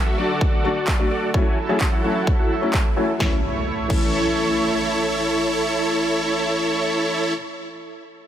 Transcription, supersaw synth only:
0.06 0.16 F#4 medium
0.06 0.16 A4 medium
0.06 0.16 E5 medium
0.18 1.08 F#4 medium
0.18 1.08 A4 medium
0.18 1.08 D5 loud
1.11 1.31 F#4 medium
1.11 1.31 A4 medium
1.11 1.31 D5 medium
1.34 1.58 E4 medium
1.34 1.58 F#4 medium
1.34 1.58 A4 medium
1.34 1.58 C#5 medium
1.34 1.58 G#5 medium
1.69 1.90 E4 medium
1.69 1.90 F#4 medium
1.69 1.90 A4 medium
1.69 1.90 C#5 medium
1.69 1.90 A5 medium
1.93 2.01 E4 medium
1.93 2.01 F#4 medium
1.93 2.01 A4 medium
1.93 2.01 C#5 medium
1.93 2.01 F#5 loud
2.04 2.36 E4 medium
2.04 2.36 F#4 medium
2.04 2.36 A4 medium
2.04 2.36 C#5 medium
2.04 2.36 F#5 medium
2.39 2.54 E4 medium
2.39 2.54 F#4 medium
2.39 2.54 A4 medium
2.39 2.54 C#5 medium
2.39 2.54 F#5 medium
2.97 3.12 E4 medium
2.97 3.12 F#4 medium
2.97 3.12 A4 medium
2.97 3.12 C#5 medium
2.97 3.12 G#5 medium
3.20 3.33 E4 medium
3.20 3.33 A4 medium
3.20 3.33 C#5 medium
3.90 7.33 E4 medium
3.90 7.33 A4 medium
3.90 7.33 C#5 medium

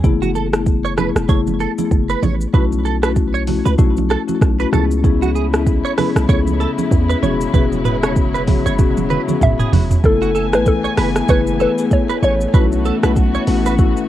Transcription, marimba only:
0.04 0.49 A3 loud
0.04 0.49 B3 medium
0.04 0.49 E4 medium
0.04 0.49 G#4 loud
0.53 0.94 A3 medium
0.53 0.94 B3 medium
0.53 0.94 E4 medium
0.53 0.95 G#4 medium
0.97 1.27 A3 medium
0.97 1.27 B3 medium
0.97 1.27 E4 medium
0.97 1.27 G#4 medium
1.29 1.49 A3 loud
1.29 1.49 B3 medium
1.29 1.49 E4 medium
1.29 1.49 G#4 loud
1.78 1.94 A3 medium
1.78 1.94 B3 medium
1.78 1.94 E4 medium
1.78 1.95 G#4 medium
2.54 2.99 A3 loud
2.54 2.99 C#4 medium
2.54 2.99 E4 medium
2.54 2.99 F#4 loud
3.03 3.44 A3 medium
3.03 3.44 C#4 medium
3.03 3.45 E4 medium
3.03 3.45 F#4 medium
3.48 3.77 A3 medium
3.48 3.77 C#4 medium
3.48 3.77 E4 medium
3.48 3.77 F#4 medium
3.78 3.99 A3 medium
3.78 3.99 C#4 medium
3.78 3.99 E4 medium
3.78 3.99 F#4 loud
4.28 4.44 A3 medium
4.28 4.44 C#4 medium
4.28 4.44 E4 medium
4.28 4.44 F#4 medium
4.59 4.75 A3 medium
4.59 4.71 C#4 medium
4.59 4.71 E4 medium
4.59 4.76 F#4 medium
4.72 5.02 B3 medium
4.72 5.02 C#4 medium
4.72 5.02 E4 medium
4.72 5.02 G#4 loud
5.03 5.49 B3 loud
5.03 5.49 C#4 medium
5.03 5.49 E4 medium
5.03 5.49 G#4 loud
5.53 5.94 B3 medium
5.53 5.94 C#4 medium
5.53 5.95 E4 medium
5.53 5.95 G#4 medium
5.98 6.27 B3 medium
5.98 6.27 C#4 medium
5.98 6.27 E4 medium
5.98 6.27 G#4 medium
6.29 6.49 B3 loud
6.29 6.49 C#4 medium
6.29 6.49 E4 medium
6.29 6.50 G#4 loud
6.78 6.94 B3 medium
6.78 6.94 C#4 medium
6.78 6.94 E4 medium
6.78 6.95 G#4 medium
7.22 7.52 B3 medium
7.22 7.52 C#4 medium
7.22 7.52 F#4 medium
7.22 7.52 G#4 loud
7.54 7.99 B3 loud
7.54 7.99 C#4 medium
7.54 7.99 F#4 medium
7.54 7.99 G#4 loud
8.03 8.44 B3 medium
8.03 8.44 C#4 medium
8.03 8.45 F#4 medium
8.03 8.45 G#4 medium
8.47 8.77 B3 medium
8.47 8.77 C#4 medium
8.47 8.77 F#4 medium
8.47 8.77 G#4 medium
8.79 8.99 B3 medium
8.79 8.99 C#4 medium
8.79 8.99 F#4 medium
8.79 8.99 G#4 loud
9.28 9.44 B3 medium
9.28 9.44 C#4 medium
9.28 9.44 F#4 medium
9.28 9.44 G#4 medium
10.04 10.49 A3 medium
10.04 10.49 B3 medium
10.04 10.49 E4 medium
10.04 10.49 A4 loud
10.53 10.94 A3 medium
10.53 10.94 B3 medium
10.53 10.95 E4 medium
10.53 10.95 G#4 medium
10.97 11.27 A3 medium
10.97 11.27 B3 medium
10.97 11.27 E4 medium
10.97 11.27 G#4 medium
11.29 11.49 A3 medium
11.29 11.49 B3 medium
11.29 11.49 E4 medium
11.29 11.50 G#4 loud
11.78 11.94 A3 medium
11.78 11.95 B3 medium
11.78 11.95 E4 medium
11.78 11.95 G#4 medium
12.54 12.99 A3 loud
12.54 12.99 C#4 medium
12.54 12.99 E4 medium
12.54 12.99 F#4 loud
13.03 13.45 A3 medium
13.03 13.45 C#4 medium
13.03 13.45 E4 medium
13.03 13.45 F#4 medium
13.48 13.77 A3 medium
13.48 13.77 C#4 medium
13.48 13.77 E4 medium
13.48 13.77 F#4 medium
13.79 13.99 A3 medium
13.79 13.99 C#4 medium
13.79 13.99 E4 medium
13.79 13.99 F#4 loud

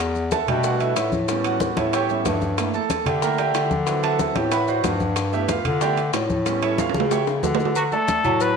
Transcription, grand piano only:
0.32 0.48 A4 medium
0.32 0.47 E5 medium
0.32 0.48 F#5 medium
0.32 0.48 A5 loud
0.47 0.94 G3 medium
0.47 0.94 A3 soft
0.47 0.94 D4 soft
0.47 0.64 F#4 medium
0.47 0.64 G4 medium
0.47 0.64 D5 medium
0.47 0.64 E5 medium
0.47 0.64 G5 medium
0.65 0.80 F#4 medium
0.65 0.80 B4 medium
0.65 0.80 D5 medium
0.65 0.80 F#5 medium
0.81 1.11 E4 medium
0.81 1.11 A4 medium
0.81 1.11 B4 medium
0.81 1.11 E5 medium
1.28 2.08 G3 medium
1.28 2.09 B3 medium
1.28 2.09 C#4 medium
1.45 1.75 F#4 medium
1.45 1.75 F#5 medium
1.77 1.93 E4 medium
1.77 1.93 A4 medium
1.77 1.92 C#5 medium
1.77 1.93 E5 medium
1.94 2.09 G4 medium
1.94 2.09 C#5 medium
1.94 2.09 E5 medium
1.94 2.09 G5 medium
2.10 2.24 G3 soft
2.10 2.24 B3 soft
2.10 2.25 C#4 soft
2.10 2.40 E4 medium
2.10 2.40 A4 medium
2.10 2.40 C#5 medium
2.10 2.40 E5 medium
2.58 2.79 A3 medium
2.58 2.79 A#3 soft
2.58 2.80 E4 medium
2.74 3.04 A4 medium
2.74 3.04 A5 loud
3.06 3.22 G4 medium
3.06 3.22 D5 medium
3.06 3.21 E5 medium
3.06 3.21 G5 medium
3.22 3.37 A3 medium
3.22 3.37 A#3 soft
3.22 3.37 E4 medium
3.22 3.38 A#4 medium
3.22 3.37 E5 medium
3.22 3.37 G5 medium
3.22 3.38 A#5 medium
3.38 3.69 G4 medium
3.38 3.69 D5 medium
3.38 3.69 E5 medium
3.38 3.68 G5 medium
3.86 4.33 F#3 medium
3.86 4.34 C4 soft
3.86 4.34 E4 medium
3.86 4.51 B4 medium
4.03 4.33 A4 medium
4.03 4.33 E5 medium
4.03 4.33 F#5 medium
4.03 4.33 A5 loud
4.35 4.50 F#3 soft
4.35 4.50 B3 soft
4.35 4.50 C4 soft
4.35 4.50 E4 soft
4.35 4.51 G4 medium
4.35 4.51 G5 medium
4.52 4.68 B4 medium
4.52 4.68 E5 medium
4.52 4.66 F#5 medium
4.52 4.67 B5 loud
4.68 4.98 F#4 medium
4.68 4.98 C5 medium
4.68 4.98 D5 medium
4.68 4.98 F#5 medium
5.32 5.54 A3 medium
5.32 5.54 B3 medium
5.32 5.49 E4 medium
5.32 5.49 G4 medium
5.32 5.49 B4 medium
5.32 5.48 E5 medium
5.49 5.79 F4 medium
5.49 5.79 F5 medium
5.81 5.96 A3 soft
5.81 5.96 B3 soft
5.81 5.96 E4 medium
5.81 5.97 G4 medium
5.81 5.97 D5 medium
5.81 5.97 E5 medium
5.81 5.97 G5 loud
6.46 6.92 G3 medium
6.46 6.92 B3 soft
6.46 6.93 C#4 medium
6.63 6.78 E4 medium
6.63 6.78 A4 medium
6.63 6.78 C#5 medium
6.63 6.78 E5 medium
6.79 7.09 F4 medium
6.79 7.09 F5 medium
7.12 7.21 G4 medium
7.12 7.21 C#5 medium
7.12 7.21 E5 medium
7.12 7.21 G5 medium
7.92 8.19 A3 medium
7.92 8.19 A4 medium
7.92 8.19 D5 medium
8.24 8.51 F#3 medium
8.24 8.51 F#4 medium
8.24 8.51 F#5 medium

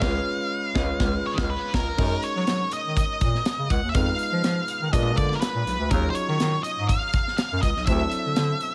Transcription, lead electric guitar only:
0.00 1.70 F5 medium
1.26 1.33 C#5 medium
1.50 1.74 B4 loud
1.75 2.25 A#4 medium
2.24 2.73 C#5 medium
2.73 2.95 D#5 medium
2.97 3.73 D#5 loud
3.71 3.88 F#5 loud
3.89 3.95 E5 medium
3.95 4.92 F5 medium
4.93 5.16 D#5 loud
5.17 5.34 D5 medium
5.35 5.40 A#4 medium
5.41 5.90 B4 loud
5.91 6.10 A#4 medium
6.10 6.16 C5 medium
6.15 6.63 C#5 loud
6.63 6.88 D#5 loud
6.89 7.36 F5 loud
7.37 7.61 F5 loud
7.62 7.85 D#5 loud
7.86 8.74 E5 loud

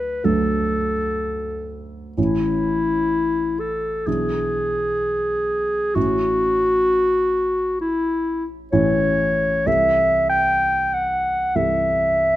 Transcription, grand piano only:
0.00 0.20 D2 soft
0.00 0.20 F#3 soft
0.00 0.20 A3 soft
0.00 0.20 D4 soft
0.24 2.13 D2 soft
0.24 2.13 F#3 soft
0.24 2.13 A3 soft
0.24 2.13 D4 soft
2.17 4.03 A1 soft
2.17 4.03 E3 soft
2.17 4.03 C#4 soft
2.17 4.03 E4 soft
4.06 5.92 B1 soft
4.06 5.92 E3 soft
4.06 5.92 D4 soft
4.06 5.92 E4 soft
5.95 8.69 A1 soft
5.95 8.69 E3 soft
5.95 8.69 C#4 soft
5.95 8.69 E4 soft
8.72 9.64 A1 soft
8.72 9.64 E3 soft
8.72 9.64 C#4 soft
8.72 9.64 E4 soft
9.66 11.52 C2 soft
9.66 11.51 E3 soft
9.66 11.51 E4 soft
9.66 11.52 A4 soft
11.55 12.36 C2 soft
11.55 12.36 E3 soft
11.55 12.36 E4 soft
11.55 12.36 A4 soft

